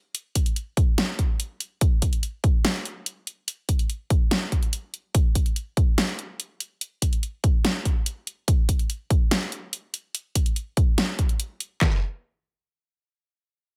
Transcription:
0.15 closed hi-hat medium
0.35 kick medium
0.35 closed hi-hat medium
0.46 closed hi-hat soft
0.56 closed hi-hat medium
0.77 kick loud
0.77 closed hi-hat soft
0.98 snare loud
0.98 closed hi-hat medium
1.19 kick medium
1.19 closed hi-hat soft
1.40 closed hi-hat medium
1.60 closed hi-hat medium
1.81 kick loud
1.81 closed hi-hat medium
2.02 kick medium
2.02 closed hi-hat medium
2.13 closed hi-hat soft
2.23 closed hi-hat soft
2.44 kick loud
2.44 closed hi-hat soft
2.65 snare loud
2.65 closed hi-hat medium
2.85 closed hi-hat soft
3.06 closed hi-hat medium
3.27 closed hi-hat medium
3.48 closed hi-hat medium
3.69 kick medium
3.69 closed hi-hat medium
3.79 closed hi-hat soft
3.90 closed hi-hat soft
4.10 kick loud
4.10 closed hi-hat soft
4.31 snare loud
4.31 closed hi-hat medium
4.52 kick medium
4.52 closed hi-hat soft
4.63 closed hi-hat soft
4.73 closed hi-hat medium
4.94 closed hi-hat medium
5.15 kick loud
5.15 closed hi-hat medium
5.35 kick medium
5.35 closed hi-hat medium
5.46 closed hi-hat soft
5.56 closed hi-hat soft
5.77 kick loud
5.77 closed hi-hat soft
5.98 snare loud
5.98 closed hi-hat medium
6.19 closed hi-hat soft
6.40 closed hi-hat medium
6.60 closed hi-hat medium
6.81 closed hi-hat medium
7.02 kick medium
7.02 closed hi-hat medium
7.13 closed hi-hat soft
7.23 closed hi-hat soft
7.44 kick loud
7.44 closed hi-hat soft
7.65 snare loud
7.65 closed hi-hat medium
7.85 kick medium
7.85 closed hi-hat soft
8.06 closed hi-hat medium
8.27 closed hi-hat medium
8.48 kick loud
8.48 closed hi-hat medium
8.69 kick medium
8.69 closed hi-hat medium
8.79 closed hi-hat soft
8.90 closed hi-hat medium
9.10 kick loud
9.10 closed hi-hat medium
9.31 snare loud
9.31 closed hi-hat medium
9.52 closed hi-hat medium
9.73 closed hi-hat medium
9.94 closed hi-hat medium
10.15 closed hi-hat medium
10.35 kick medium
10.35 closed hi-hat medium
10.46 closed hi-hat soft
10.56 closed hi-hat medium
10.77 kick loud
10.77 closed hi-hat medium
10.98 snare loud
10.98 closed hi-hat medium
11.19 kick medium
11.19 closed hi-hat medium
11.29 closed hi-hat soft
11.40 closed hi-hat medium
11.60 closed hi-hat medium
11.81 kick loud
11.81 snare loud
11.81 clap medium

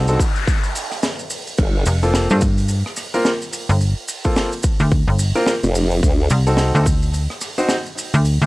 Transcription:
0.00 0.18 C2 loud
0.00 noise sweep medium
0.08 0.17 C4 medium
0.08 0.17 D#4 medium
0.08 0.17 F#4 medium
0.08 0.17 A4 medium
0.08 open hi-hat soft
0.08 maracas soft
0.20 kick loud
0.20 open hi-hat medium
0.20 maracas medium
0.36 cross-stick soft
0.36 open hi-hat medium
0.36 maracas soft
0.38 cross-stick soft
0.44 cross-stick soft
0.47 kick loud
0.47 cross-stick soft
0.47 open hi-hat medium
0.47 maracas medium
0.53 cross-stick soft
0.57 cross-stick soft
0.64 open hi-hat soft
0.64 maracas soft
0.75 open hi-hat medium
0.75 maracas medium
0.91 cross-stick soft
0.91 open hi-hat soft
0.91 maracas soft
1.03 snare loud
1.03 open hi-hat medium
1.03 maracas medium
1.19 open hi-hat soft
1.19 maracas soft
1.22 open hi-hat soft
1.28 open hi-hat soft
1.28 maracas medium
1.31 open hi-hat medium
1.31 open hi-hat soft
1.37 open hi-hat soft
1.40 open hi-hat soft
1.47 open hi-hat medium
1.47 maracas soft
1.58 1.84 G1 medium
1.58 kick loud
1.58 open hi-hat medium
1.58 crash medium
1.58 maracas medium
1.75 open hi-hat soft
1.86 2.28 F1 loud
1.86 open hi-hat medium
1.86 maracas medium
2.03 2.27 A#3 medium
2.03 2.27 C4 medium
2.03 2.27 F4 medium
2.03 2.27 A4 medium
2.03 open hi-hat soft
2.03 maracas soft
2.14 snare loud
2.14 open hi-hat medium
2.14 maracas medium
2.30 2.83 G2 loud
2.30 2.40 A#3 medium
2.30 2.40 C4 medium
2.30 2.39 F4 medium
2.30 2.40 A4 medium
2.30 open hi-hat soft
2.30 maracas soft
2.34 open hi-hat soft
2.37 open hi-hat soft
2.40 kick loud
2.40 open hi-hat soft
2.40 maracas medium
2.42 open hi-hat medium
2.42 open hi-hat soft
2.46 open hi-hat soft
2.51 open hi-hat soft
2.54 open hi-hat soft
2.54 maracas soft
2.58 open hi-hat medium
2.68 open hi-hat medium
2.68 maracas medium
2.86 cross-stick medium
2.86 open hi-hat soft
2.96 cross-stick soft
2.96 open hi-hat medium
2.96 maracas medium
3.14 3.29 A#3 medium
3.14 3.29 C4 medium
3.14 3.29 F4 medium
3.14 3.29 A#4 loud
3.14 open hi-hat medium
3.14 maracas soft
3.25 snare loud
3.25 open hi-hat medium
3.25 maracas medium
3.42 open hi-hat soft
3.42 maracas soft
3.53 open hi-hat medium
3.53 maracas medium
3.69 3.94 G1 loud
3.69 open hi-hat medium
3.69 maracas soft
3.81 open hi-hat medium
3.81 maracas medium
3.97 open hi-hat soft
4.08 open hi-hat medium
4.08 maracas loud
4.24 4.49 A#3 medium
4.24 4.49 C4 medium
4.24 4.49 F4 medium
4.24 4.49 A4 medium
4.24 kick medium
4.24 open hi-hat soft
4.24 maracas soft
4.36 snare loud
4.36 open hi-hat medium
4.36 maracas medium
4.52 open hi-hat soft
4.52 maracas soft
4.63 kick loud
4.63 open hi-hat medium
4.63 maracas medium
4.79 5.05 D2 loud
4.79 cross-stick soft
4.79 open hi-hat medium
4.79 maracas soft
4.91 kick loud
4.91 open hi-hat medium
4.91 maracas soft
5.08 5.33 G1 loud
5.08 open hi-hat soft
5.19 open hi-hat medium
5.19 maracas medium
5.35 5.51 A#3 medium
5.35 5.51 C4 medium
5.35 5.51 F4 medium
5.35 5.51 A#4 loud
5.35 cross-stick soft
5.35 open hi-hat medium
5.35 maracas soft
5.47 snare loud
5.47 open hi-hat medium
5.47 maracas medium
5.63 6.01 F1 medium
5.63 open hi-hat soft
5.63 maracas soft
5.75 open hi-hat medium
5.75 maracas loud
5.91 open hi-hat medium
5.91 maracas soft
6.03 6.29 D2 loud
6.03 kick loud
6.03 maracas medium
6.20 open hi-hat soft
6.29 6.72 C2 loud
6.29 open hi-hat medium
6.29 maracas medium
6.47 6.71 C4 medium
6.47 6.71 D#4 medium
6.47 6.71 F#4 medium
6.47 6.71 A4 medium
6.47 open hi-hat soft
6.47 maracas soft
6.57 snare loud
6.57 open hi-hat medium
6.57 maracas medium
6.74 7.28 D2 medium
6.74 6.84 C4 medium
6.74 6.84 D#4 medium
6.74 6.84 F#4 medium
6.74 6.84 A4 medium
6.74 open hi-hat soft
6.74 maracas soft
6.86 kick loud
6.86 open hi-hat medium
6.86 maracas medium
7.02 open hi-hat medium
7.02 maracas soft
7.14 open hi-hat medium
7.14 maracas medium
7.30 cross-stick soft
7.30 open hi-hat soft
7.41 cross-stick soft
7.41 open hi-hat medium
7.41 maracas medium
7.58 7.74 C4 medium
7.58 7.74 D#4 medium
7.58 7.74 F#4 medium
7.58 7.74 C5 loud
7.58 open hi-hat medium
7.58 maracas soft
7.69 snare loud
7.69 open hi-hat medium
7.69 maracas medium
7.86 maracas soft
7.97 open hi-hat medium
7.97 maracas loud
8.14 8.39 D2 loud
8.14 open hi-hat soft
8.14 maracas soft
8.25 open hi-hat medium
8.25 maracas medium
8.41 8.46 D2 loud
8.41 open hi-hat soft
8.41 maracas soft

